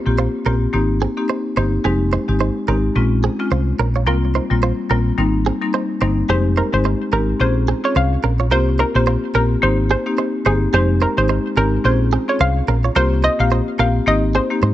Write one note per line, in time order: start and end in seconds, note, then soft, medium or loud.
0.06 0.26 A#1 loud
0.06 0.20 A#3 medium
0.06 0.21 C4 medium
0.06 0.21 F4 medium
0.06 0.21 G4 medium
0.18 0.27 F4 medium
0.18 0.27 C5 medium
0.45 0.65 A#1 medium
0.45 0.64 A#3 medium
0.45 0.64 C4 medium
0.45 0.55 C#4 medium
0.45 0.64 F4 medium
0.45 0.64 G4 medium
0.45 0.54 A#4 medium
0.73 1.04 G#1 loud
0.73 1.13 A#3 medium
0.73 1.13 C4 medium
0.73 1.13 D#4 medium
0.73 1.14 G4 loud
1.02 1.11 C4 medium
1.02 1.10 G#4 medium
1.17 1.32 A#3 medium
1.17 1.32 C4 medium
1.17 1.32 D#4 medium
1.17 1.32 G4 medium
1.29 1.38 D#4 medium
1.29 1.38 C5 medium
1.56 1.76 G1 medium
1.56 1.75 A#3 medium
1.56 1.75 C4 medium
1.56 1.75 D#4 medium
1.56 1.66 D#4 medium
1.56 1.75 G4 medium
1.56 1.66 C5 medium
1.84 2.16 F1 loud
1.84 2.24 G#3 medium
1.84 2.24 C4 medium
1.84 1.94 C4 medium
1.84 2.25 D#4 medium
1.84 2.25 G4 loud
1.84 1.93 G#4 medium
2.13 2.22 D#4 medium
2.13 2.21 C5 medium
2.28 2.48 G#1 medium
2.28 2.43 G#3 medium
2.28 2.43 C4 medium
2.28 2.43 D#4 medium
2.28 2.43 G4 medium
2.40 2.49 D#4 medium
2.40 2.49 C5 medium
2.68 2.87 G#1 medium
2.68 2.86 G#3 medium
2.68 2.86 C4 medium
2.68 2.77 C#4 medium
2.68 2.86 D#4 medium
2.68 2.86 G4 medium
2.68 2.77 A#4 medium
2.96 3.27 A#1 loud
2.96 3.36 G#3 medium
2.96 3.36 C4 medium
2.96 3.36 C#4 medium
2.96 3.36 F4 loud
3.24 3.33 C4 medium
3.24 3.32 G#4 medium
3.39 3.54 G#3 medium
3.39 3.54 C4 medium
3.39 3.54 C#4 medium
3.39 3.54 F4 medium
3.51 3.71 C2 medium
3.51 3.60 F4 medium
3.51 3.60 C5 medium
3.79 4.07 A#1 medium
3.79 3.88 C#4 medium
3.79 3.88 A#4 medium
3.96 4.02 F4 medium
3.96 4.02 C#5 medium
4.06 4.38 C2 loud
4.06 4.47 G3 medium
4.06 4.47 A#3 medium
4.06 4.47 C4 medium
4.06 4.47 F4 loud
4.06 4.16 F4 medium
4.06 4.16 A#4 loud
4.35 4.44 D#4 medium
4.35 4.43 C5 medium
4.50 4.70 A#1 loud
4.50 4.65 G3 medium
4.50 4.65 A#3 medium
4.50 4.65 C4 medium
4.50 4.65 F4 medium
4.63 4.72 F4 medium
4.63 4.71 C5 medium
4.90 5.10 A#1 medium
4.90 5.08 G3 medium
4.90 5.08 A#3 medium
4.90 5.08 C4 medium
4.90 5.00 C#4 medium
4.90 5.08 F4 medium
4.90 4.99 A#4 medium
5.18 5.49 G#1 loud
5.18 5.58 G3 medium
5.18 5.58 A#3 medium
5.18 5.58 C4 medium
5.18 5.58 D#4 loud
5.46 5.55 C4 medium
5.46 5.55 G#4 medium
5.62 5.76 G3 medium
5.62 5.76 A#3 medium
5.62 5.76 C4 medium
5.62 5.76 D#4 medium
5.74 5.83 D#4 medium
5.74 5.82 C5 medium
6.01 6.21 G1 medium
6.01 6.19 G3 medium
6.01 6.19 A#3 medium
6.01 6.19 C4 medium
6.01 6.20 D#4 medium
6.01 6.11 D#4 medium
6.01 6.10 C5 medium
6.29 6.60 F1 loud
6.29 6.69 G#3 loud
6.29 6.69 C4 medium
6.29 6.38 C4 medium
6.29 6.69 D#4 medium
6.29 6.69 G4 loud
6.29 6.38 G#4 medium
6.29 6.43 C5 medium
6.57 6.66 D#4 medium
6.57 6.71 A#4 medium
6.57 6.66 C5 medium
6.73 6.92 G#1 medium
6.73 6.87 G#3 medium
6.73 6.87 C4 medium
6.73 6.87 D#4 medium
6.73 6.87 G4 medium
6.73 6.83 C5 medium
6.85 6.94 D#4 medium
6.85 6.93 C5 medium
7.12 7.32 G#1 loud
7.12 7.30 G#3 medium
7.12 7.30 C4 medium
7.12 7.22 C#4 medium
7.12 7.30 D#4 medium
7.12 7.31 G4 medium
7.12 7.21 A#4 medium
7.12 7.26 A#4 medium
7.40 7.71 A#1 loud
7.40 7.80 C4 medium
7.40 7.80 C#4 medium
7.40 7.80 F4 medium
7.40 7.80 G#4 loud
7.40 7.54 C5 medium
7.68 7.77 C4 medium
7.68 7.77 G#4 medium
7.84 7.98 C4 medium
7.84 7.98 C#4 medium
7.84 7.98 F4 medium
7.84 7.99 G#4 medium
7.84 7.94 C#5 medium
7.96 8.15 C2 medium
7.96 8.05 F4 medium
7.96 8.04 C5 medium
7.96 8.37 F5 medium
8.23 8.51 A#1 medium
8.23 8.33 C#4 medium
8.23 8.32 A#4 medium
8.40 8.46 F4 medium
8.40 8.46 C#5 medium
8.51 8.82 C2 loud
8.51 8.91 A#3 medium
8.51 8.91 C4 medium
8.51 8.91 F4 medium
8.51 8.60 F4 medium
8.51 8.91 G4 loud
8.51 8.60 A#4 medium
8.51 8.65 C5 loud
8.79 8.88 D#4 medium
8.79 8.93 A#4 medium
8.79 8.88 C5 medium
8.95 9.15 A#1 medium
8.95 9.09 A#3 medium
8.95 9.09 C4 medium
8.95 9.10 F4 medium
8.95 9.10 G4 medium
8.95 9.06 C5 medium
9.07 9.16 F4 medium
9.07 9.15 C5 medium
9.34 9.54 A#1 medium
9.34 9.52 A#3 medium
9.34 9.53 C4 medium
9.34 9.44 C#4 medium
9.34 9.53 F4 medium
9.34 9.53 G4 medium
9.34 9.43 A#4 medium
9.34 9.49 A#4 medium
9.62 9.93 G#1 loud
9.62 10.02 A#3 medium
9.62 10.02 C4 medium
9.62 10.02 D#4 medium
9.62 10.02 G4 loud
9.62 9.76 C5 medium
9.91 9.99 C4 medium
9.91 9.99 G#4 medium
9.91 10.04 C5 medium
10.06 10.21 A#3 medium
10.06 10.21 C4 medium
10.06 10.21 D#4 medium
10.06 10.21 G4 medium
10.18 10.27 D#4 medium
10.18 10.27 C5 medium
10.45 10.65 G1 medium
10.45 10.64 A#3 medium
10.45 10.64 C4 medium
10.45 10.64 D#4 medium
10.45 10.55 D#4 medium
10.45 10.64 G4 medium
10.45 10.60 G#4 medium
10.45 10.54 C5 medium
10.73 11.04 F1 loud
10.73 11.13 G#3 loud
10.73 11.13 C4 medium
10.73 10.83 C4 medium
10.73 11.14 D#4 medium
10.73 11.14 G4 loud
10.73 10.82 G#4 medium
10.73 10.88 C5 medium
11.02 11.11 D#4 medium
11.02 11.15 A#4 medium
11.02 11.10 C5 medium
11.17 11.37 G#1 loud
11.17 11.32 G#3 medium
11.17 11.32 C4 medium
11.17 11.32 D#4 medium
11.17 11.32 G4 medium
11.17 11.28 C5 medium
11.29 11.38 D#4 medium
11.29 11.38 C5 medium
11.56 11.76 G#1 medium
11.56 11.75 G#3 medium
11.56 11.75 C4 medium
11.56 11.66 C#4 medium
11.56 11.75 D#4 medium
11.56 11.75 G4 medium
11.56 11.65 A#4 medium
11.56 11.71 A#4 medium
11.84 12.16 A#1 loud
11.84 12.24 C4 medium
11.84 12.25 C#4 medium
11.84 12.25 F4 medium
11.84 12.25 G#4 loud
11.84 11.99 C5 medium
12.13 12.22 C4 medium
12.13 12.21 G#4 medium
12.28 12.43 C4 medium
12.28 12.43 C#4 medium
12.28 12.43 F4 medium
12.28 12.43 G#4 medium
12.28 12.39 C#5 medium
12.40 12.60 C2 medium
12.40 12.49 F4 medium
12.40 12.49 C5 medium
12.40 12.82 F5 medium
12.68 12.87 A#1 loud
12.68 12.77 C#4 medium
12.68 12.77 A#4 medium
12.84 12.91 F4 medium
12.84 12.90 C#5 medium
12.95 13.27 C2 loud
12.95 13.36 A#3 medium
12.95 13.36 C4 medium
12.95 13.36 F4 medium
12.95 13.05 F4 medium
12.95 13.36 G4 loud
12.95 13.04 A#4 loud
12.95 13.10 C5 loud
13.24 13.33 D#4 medium
13.24 13.32 C5 medium
13.24 13.38 D#5 medium
13.39 13.59 A#1 medium
13.39 13.54 A#3 medium
13.39 13.54 C4 medium
13.39 13.54 F4 medium
13.39 13.54 G4 medium
13.39 13.50 F5 medium
13.52 13.60 F4 medium
13.52 13.60 C5 medium
13.79 13.99 A#1 medium
13.79 13.97 A#3 medium
13.79 13.97 C4 medium
13.79 13.88 C#4 medium
13.79 13.97 F4 medium
13.79 13.97 G4 medium
13.79 13.88 A#4 medium
13.79 13.93 F5 medium
14.06 14.38 G#1 loud
14.06 14.47 A#3 medium
14.06 14.47 C4 medium
14.06 14.47 D#4 medium
14.06 14.47 G4 loud
14.06 14.21 D#5 medium
14.35 14.44 C4 medium
14.35 14.43 G#4 medium
14.35 14.49 C5 medium
14.50 14.65 A#3 medium
14.50 14.65 C4 medium
14.50 14.65 D#4 medium
14.50 14.65 G4 medium
14.62 14.74 G#2 loud
14.62 14.72 D#4 medium
14.62 14.71 C5 medium